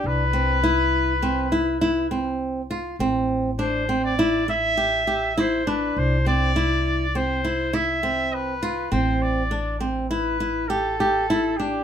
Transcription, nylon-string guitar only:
X:1
M:5/4
L:1/8
Q:1/4=101
K:Am
V:1 name="Nylon-string guitar"
D C E2 C E E C2 F | C2 D C E E G G E D- | D C E2 C E E C2 F | C2 D C E E G G E D |]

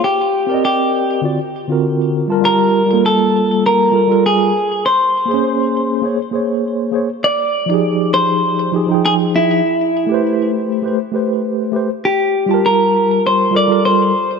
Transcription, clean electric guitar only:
X:1
M:4/4
L:1/8
Q:"Swing 16ths" 1/4=100
K:Dphr
V:1 name="Clean electric guitar"
G2 G2 z4 | [K:Bblyd] B2 A2 B2 _A2 | c4 z4 | d3 c2 z _A E- |
E3 z4 z | G2 B2 c d c2 |]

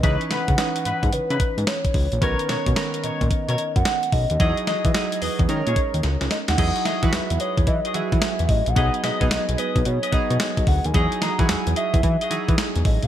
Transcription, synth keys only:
X:1
M:4/4
L:1/16
Q:"Swing 16ths" 1/4=110
K:Elyd
V:1 name="Synth keys"
[E,CDB]4 [E,CDB]6- [E,CDB] z4 z | [D,B,CA]4 [D,B,CA]6- [D,B,CA] z4 z | [F,DEG]4 [F,DEG]4 [G,CDA]6- [G,CDA] z | [F,DEG]3 [F,EFB]6 z [F,EFG]4- [F,EFG] z |
[F,B,DG]3 [F,B,DG]6 z [F,B,DG]4- [F,B,DG] z | [F,DEG]3 [F,EFG]6 z [F,DEG]4- [F,DEG] z |]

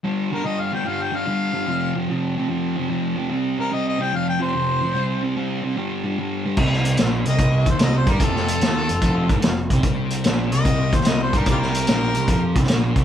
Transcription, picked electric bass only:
X:1
M:4/4
L:1/8
Q:"Swing" 1/4=147
K:Gdor
V:1 name="Picked electric bass" clef=bass
z8 | z8 | z8 | z8 |
C,,2 B,,, C,, C,, _E,, C,, G,, | F,,,2 _E,, F,,, F,,, _A,,, F,,, C,, | C,,2 B,,, C,, C,, _E,, C,, G,, | C,,2 B,,, C,, F,, C,, B,,, C,, |]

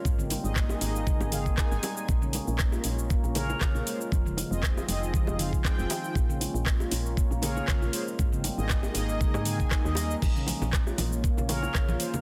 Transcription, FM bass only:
X:1
M:4/4
L:1/16
Q:"Swing 16ths" 1/4=118
K:Bbm
V:1 name="FM bass" clef=bass
A,,,2 z A,,,2 z A,,,2 z A,,,2 z2 A,,, z2 | B,,,2 z B,,,2 z B,,,2 z B,,,2 z2 B,,, z2 | F,,,2 z F,,,2 z F,,,2 z F,,,2 z2 F,,, z2 | B,,,2 z B,,,2 z B,,,2 z B,,,2 z2 B,,, z2 |
A,,,2 z A,,,2 z A,,,2 z A,,2 z2 E,,2 z | B,,,2 z B,,,2 z B,,,2 z B,,,2 z2 B,,, z2 |]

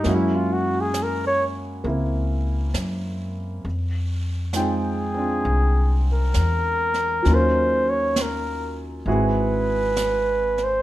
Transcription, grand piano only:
X:1
M:4/4
L:1/8
Q:"Swing" 1/4=66
K:Fdor
V:1 name="Grand piano"
[^G,^A,^C=E^F]4 [A,=CE]4 | z2 [A,CEFg] [CDF]4- [CDF] | [_G,_DEFB]4 [A,C=E_GA]4 |]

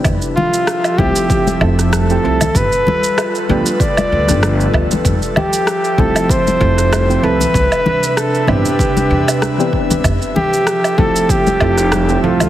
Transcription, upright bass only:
X:1
M:4/4
L:1/16
Q:"Swing 16ths" 1/4=96
K:Flyd
V:1 name="Upright bass" clef=bass
F,,, z4 z C,, z3 F,,,3 z C,, z | G,,, z4 z D,, z3 D,, G,,,2 z D,, z | F,,, z4 z C,, z3 F,,,3 z C,, z | C,, z4 z G,,, z3 E,, z4 z |
F,,, z4 z C,, z3 F,,,3 z C,, z |]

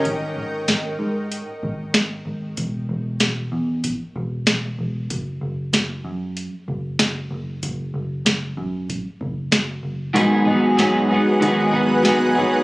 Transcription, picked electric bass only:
X:1
M:4/4
L:1/16
Q:1/4=95
K:G#m
V:1 name="Picked electric bass" clef=bass
G,,,2 G,,,2 G,,,2 G,,3 z G,,,2 G,,,2 G,,,2 | E,,,2 E,,,2 E,,,2 E,,3 z E,,,2 E,,,2 E,,,2 | F,,,2 F,,,2 F,,,2 F,,3 z F,,,2 F,,,2 F,,,2 | F,,,2 F,,,2 F,,,2 F,,3 z F,,,2 F,,,2 F,,,2 |
G,,,2 G,,,2 G,,,2 G,,3 z G,,,2 G,,,2 G,,,2 |]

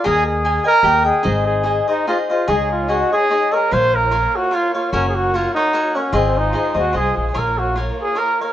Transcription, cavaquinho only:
X:1
M:3/4
L:1/8
Q:"Swing" 1/4=147
K:Ab
V:1 name="Cavaquinho"
[ABea]2 [ABea] [Bea] [GBeg] [Beg] | [EAce]2 [EAce] [Ace] [EAce] [Ace] | [K:Db] [EAde]2 [EAde] [Ade] [EAde] [Ade] | [FBdf]2 [FBdf]2 [FBdf] [Bdf] |
[GBdg]2 [GBdg] [Bdg] [GBdg] [Bdg] | [FAce]2 [FAce] [Ace] [FAce]2 | [FBdf]2 [FBdf]2 [FBdf] [Bdf] |]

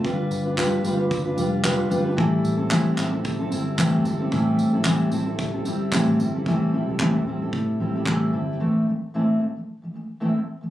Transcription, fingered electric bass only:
X:1
M:4/4
L:1/16
Q:"Swing 16ths" 1/4=112
K:Am
V:1 name="Fingered electric bass" clef=bass
G,,,2 G,,,3 z G,,,4 F,,,4 G,,,2 | A,,,2 A,,,3 z A,,,4 G,,,4 G,,,2 | A,,,2 A,,,3 z A,,,4 G,,,3 A,,, G,,,2 | A,,,3 B,,, E,,2 A,,,2 A,,2 A,,,4 G,,,2 |
z16 |]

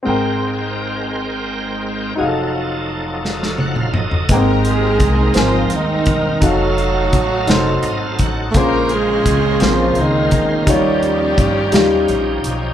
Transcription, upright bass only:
X:1
M:6/8
L:1/8
Q:3/8=57
K:Ab
V:1 name="Upright bass" clef=bass
A,,,6 | F,,,6 | A,,,2 C,, A,,, E,,, _F,,, | F,,,2 =A,,, F,,, _A,,, =A,,, |
B,,,2 D,, B,,, D,, =D,, | E,,2 G,, E,, B,,, _C,, |]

